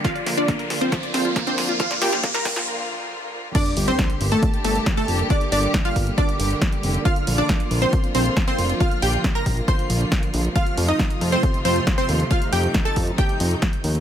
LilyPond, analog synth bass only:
\new Staff \with { instrumentName = "Analog synth bass" } { \clef bass \time 4/4 \key g \minor \tempo 4 = 137 r8 bes,,8 r8 bes,,8 r8 bes,,8 r8 bes,8 | r8 bes,,8 r8 bes,,8 r2 | r8 g,,8 r8 g,,8 r8 g,,8 r8 f,,8 | r8 g,,8 r8 g,,8 r8 g,,8 r8 f,,8 |
r8 bes,,8 r8 bes,,8 r8 bes,,8 r8 f,,8 | r8 bes,,8 r8 bes,,8 r8 bes,,8 r8 bes,,8 | r8 f,8 r8 f,8 r8 f,8 r8 ees,8 | r8 f,8 r8 f,8 r8 f,8 r8 ees,8 | }